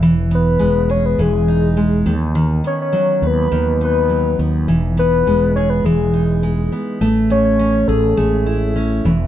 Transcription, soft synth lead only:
\new Staff \with { instrumentName = "Soft synth lead" } { \time 4/4 \key e \major \tempo 4 = 103 r8 b'4 cis''16 b'16 gis'4. r8 | r8 cis''16 cis''8. b'4 b'4 r8 | r8 b'4 cis''16 b'16 gis'4. r8 | r8 cis''16 cis''8. a'8 gis'4 r4 | }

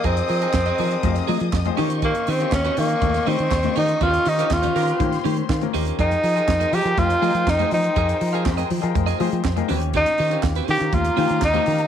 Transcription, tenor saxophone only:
\new Staff \with { instrumentName = "Tenor saxophone" } { \time 4/4 \key f \minor \tempo 4 = 121 c'2. r4 | bes8 c'8 des'8 bes4 c'4 ees'8 | f'8 ees'8 f'4. r4. | ees'4. g'8 f'4 ees'8 ees'8~ |
ees'4 r2. | ees'4 r8 g'8 f'4 ees'4 | }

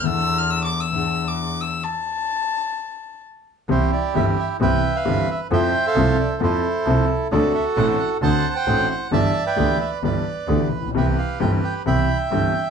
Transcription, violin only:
\new Staff \with { instrumentName = "Violin" } { \time 4/4 \key e \phrygian \tempo 4 = 132 e'''8. f'''16 \tuplet 3/2 { e'''8 d'''8 e'''8~ } e'''8. d'''8. e'''8 | a''2. r4 | \key c \major r1 | r1 |
r1 | r1 | r1 | }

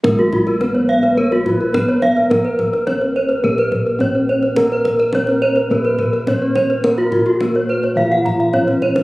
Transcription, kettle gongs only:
<<
  \new Staff \with { instrumentName = "Kettle gongs" } { \time 4/4 \tempo 4 = 106 bes'2. r4 | bes'2. r4 | bes'2. r4 | bes'2. r4 | }
  \new Staff \with { instrumentName = "Kettle gongs" } { \time 4/4 << { r4 ces'8 r4. ces'8 r8 | r4 ces'8 r4. ces'8 r8 | r4 ces'8 r4. ces'8 r8 | r4 ces'8 r4. ces'8 r8 | } \\ { bes,,1~ | bes,,2 bes,2~ | bes,4 r4 bes,2~ | bes,4 r4 bes,2 | } >> }
>>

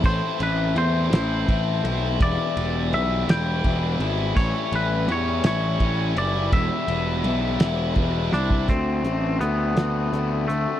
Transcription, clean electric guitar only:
\new Staff \with { instrumentName = "Clean electric guitar" } { \time 6/8 \key e \minor \tempo 4. = 56 c''8 b'8 c''2 | d''4 e''8 g''4 r8 | cis''8 b'8 cis''8 cis''4 d''8 | e''2 r8 d'8 |
c'4 b4. a8 | }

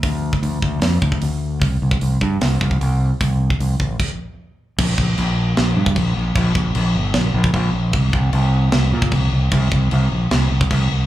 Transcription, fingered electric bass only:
\new Staff \with { instrumentName = "Fingered electric bass" } { \clef bass \time 4/4 \key c \mixolydian \tempo 4 = 152 d,4 d,8 d,8 f,8 d,8 d,4 | c,8 c,8 c,8 g,8 c,8 c,8 c,4 | c,4 c,8 a,,8 r2 | bes,,8 bes,,8 bes,,4 bes,,8 g,8 bes,,8 bes,,8 |
bes,,8 bes,,8 bes,,8 g,,8 bes,,8 bes,,8 bes,,8 bes,,8 | c,8 c,8 c,4 c,8 bes,8 c,8 c,8 | c,8 c,8 c,8 bes,,8 c,8 c,8 c,8 c,8 | }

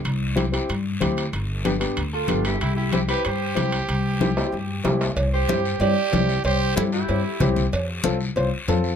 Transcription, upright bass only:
\new Staff \with { instrumentName = "Upright bass" } { \clef bass \time 4/4 \key c \major \tempo 4 = 188 c,2 g,4 d,4 | g,,2 d,4 g,,4 | c,2 g,4 c,4 | c,2 g,4 c,4 |
c,4 g,4 g,8 r8 c,4 | c,4 g,4 g,8 r8 c,4 | f,4 c,4 c,8 r8 f,4 | }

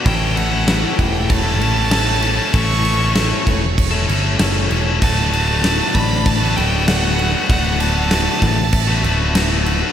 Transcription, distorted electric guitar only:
\new Staff \with { instrumentName = "Distorted electric guitar" } { \time 4/4 \key d \major \tempo 4 = 97 <a, e a cis' e' a'>8 <a cis' e' a'>16 <a cis' e' a'>16 <a, e a cis' e' a'>16 <a cis' e' a'>8. r16 <a cis' e' a'>16 <a cis' e' a'>8 <a, e a cis' e' a'>16 <a cis' e' a'>16 <a cis' e' a'>16 <a cis' e' a'>16 | <a, e a cis' e' a'>8 <a cis' e' a'>16 <a cis' e' a'>16 <a, e a cis' e' a'>16 <a cis' e' a'>8. r16 <a cis' e' a'>16 <a cis' e' a'>8 <a, e a cis' e' a'>16 <a cis' e' a'>16 <a cis' e' a'>16 <a cis' e' a'>16 | <d, a, d a b fis'>8 <d a b fis'>16 <d a b fis'>16 <d, a, d a b fis'>16 <d a b fis'>8. r16 <d a b fis'>16 <d a b fis'>8 <d, a, d a b fis'>16 <d a b fis'>16 <d a b fis'>16 <d a b fis'>16 | <d, a, d a b fis'>8 <d a b fis'>16 <d a b fis'>16 <d, a, d a b fis'>16 <d a b fis'>8. r16 <d a b fis'>16 <d a b fis'>8 <d, a, d a b fis'>16 <d a b fis'>16 <d a b fis'>16 <d a b fis'>16 | }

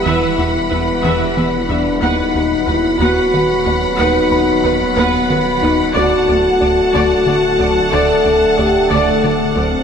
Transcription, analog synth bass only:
\new Staff \with { instrumentName = "Analog synth bass" } { \clef bass \time 6/8 \key b \phrygian \tempo 4. = 61 e,8 e,8 e,8 e,8 e8 e,8 | dis,8 dis,8 dis,8 dis,8 dis8 dis,8 | dis,8 dis,8 dis,8 dis,8 dis8 dis,8 | d,8 d,8 d,8 d,8 d8 d,8 |
d,8 d,8 d,8 d,8 d8 d,8 | }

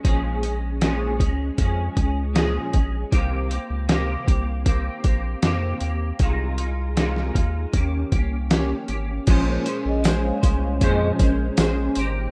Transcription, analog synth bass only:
\new Staff \with { instrumentName = "Analog synth bass" } { \clef bass \time 4/4 \key bes \dorian \tempo 4 = 78 bes,,4. des,8 f,8 des,4 bes,,8 | c,8. des,8. c,4 bes,,8 f,8 ees,8 | c,4. ees,8 ees,8 c,4 aes,,8 | bes,,8 r16 bes,,8. c,8 f,8 bes,,8 bes,,8 aes,,8 | }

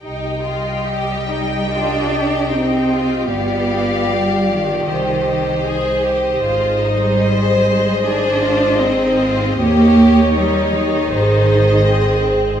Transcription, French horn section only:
\new Staff \with { instrumentName = "French horn section" } { \time 4/4 \key c \minor \tempo 4 = 77 <g' ees''>1 | <f' d''>2 <ees' c''>2~ | <ees' c''>1 | <g' des''>2 <aes' c''>2 | }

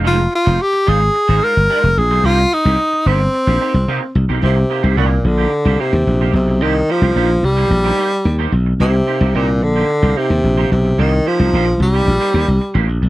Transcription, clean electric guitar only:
\new Staff \with { instrumentName = "Clean electric guitar" } { \time 4/4 \key c \minor \tempo 4 = 110 <aes ees' f' c''>16 r8 <aes ees' f' c''>16 r8 <aes ees' f' c''>16 r8 <aes ees' f' c''>16 <aes ees' f' c''>16 r16 <aes ees' f' c''>16 r8 <aes ees' f' c''>16 | <bes ees' g' c''>16 r8 <bes ees' g' c''>16 r8 <bes ees' g' c''>16 r8 <bes ees' g' c''>16 <bes ees' g' c''>16 r16 <bes ees' g' c''>16 r8 <bes ees' g' c''>16 | <bes ees' g' c''>16 r16 <bes ees' g' c''>16 <bes ees' g' c''>16 <bes ees' g' c''>16 r8 <bes ees' g' c''>16 r16 <bes ees' g' c''>16 <bes ees' g' c''>16 r8 <bes ees' g' c''>16 r8 | <bes ees' g' c''>16 r16 <bes ees' g' c''>16 <bes ees' g' c''>16 <bes ees' g' c''>16 r8 <bes ees' g' c''>16 r16 <bes ees' g' c''>16 <bes ees' g' c''>16 r8 <bes ees' g' c''>16 r8 |
<bes ees' g' c''>16 r16 <bes ees' g' c''>16 <bes ees' g' c''>16 <bes ees' g' c''>16 r8 <bes ees' g' c''>16 r16 <bes ees' g' c''>16 <bes ees' g' c''>16 r8 <bes ees' g' c''>16 r8 | <bes ees' g' c''>16 r16 <bes ees' g' c''>16 <bes ees' g' c''>16 <bes ees' g' c''>16 r8 <bes ees' g' c''>16 r16 <bes ees' g' c''>16 <bes ees' g' c''>16 r8 <bes ees' g' c''>16 r8 | }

